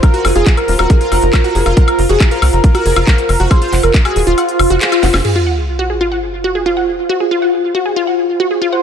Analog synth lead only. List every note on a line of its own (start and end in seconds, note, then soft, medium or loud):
0.03 0.25 A#4 loud
0.36 0.50 G#4 medium
0.57 0.72 A#4 medium
0.79 1.68 A#4 loud
1.77 1.99 A#4 loud
2.09 2.24 G#4 loud
2.31 2.46 A#4 medium
2.53 3.42 A#4 loud
3.51 3.73 C5 loud
3.83 3.98 A#4 loud
4.05 4.20 G#4 medium
4.27 5.16 F4 loud
8.72 8.82 C5 loud